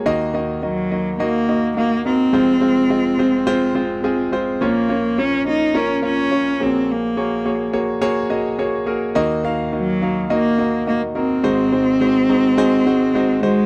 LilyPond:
<<
  \new Staff \with { instrumentName = "Grand piano" } { \time 4/4 \key ees \dorian \tempo 4 = 105 << { r1 | r1 | r1 | r1 |
r1 | r4. bes''8 aes''8 ges''8 ees''4 | } \\ { <bes ees' ges' ees''>8 <bes ees' ges' ees''>8 <bes ees' ges' ees''>8 <bes ees' ges' ees''>8 <bes ees' ges' ees''>8 <bes ees' ges' ees''>8 <bes ees' ges' f''>8 <bes ees' ges' bes'>8 | <aes c' f' c''>8 <aes c' f' c''>8 <aes c' f' ees''>8 <aes c' f' c''>8 <aes c' f' c''>8 <aes c' f' c''>8 <aes c' f' aes'>8 <aes c' f' c''>8 | <bes des' f' des''>8 <bes des' f' des''>8 <bes des' f' des''>8 <bes des' f' des''>8 <bes des' f' bes'>8 <bes des' f' des''>8 <bes des' f' des''>8 <bes ges' aes' des''>8~ | <bes ges' aes' des''>8 <bes ges' aes' des''>8 <bes ges' aes' des''>8 <bes ges' aes' des''>8 <bes ges' aes' des''>8 <bes ges' aes' ees''>8 <bes ges' aes' des''>8 <bes ges' aes' bes'>8 |
<bes ees' ges' ees''>8 <bes ees' ges' f''>8 <bes ees' ges' ees''>8 <bes ees' ges' f''>8 <bes ees' ges' ees''>8 <bes ees' ges' ees''>8 <bes ees' ges' ees''>8 <bes ees' ges' bes'>8 | <aes ees' ges' c''>8 <aes ees' ges' c''>8 <aes ees' ges' c''>8 <aes ees' ges' c''>8 <aes ees' ges' c''>8 <aes ees' ges' c''>8 <aes ees' ges' c''>8 <aes ees' ges' c''>8 | } >> }
  \new Staff \with { instrumentName = "Grand piano" } { \clef bass \time 4/4 \key ees \dorian <ees, ees>1 | <f,, f,>1 | <bes,, bes,>2.~ <bes,, bes,>8 <bes,, bes,>8~ | <bes,, bes,>2.~ <bes,, bes,>8 r8 |
<ees, ees>1 | <aes,, aes,>1 | }
  \new Staff \with { instrumentName = "Cello" } { \time 4/4 \key ees \dorian r4 ges4 bes4 bes8 c'8~ | c'2.~ c'8 r8 | bes4 des'8 ees'8 des'8 des'4 c'8 | bes4. r2 r8 |
r4 ges4 bes4 bes8 c'8~ | c'2.~ c'8 aes8 | }
>>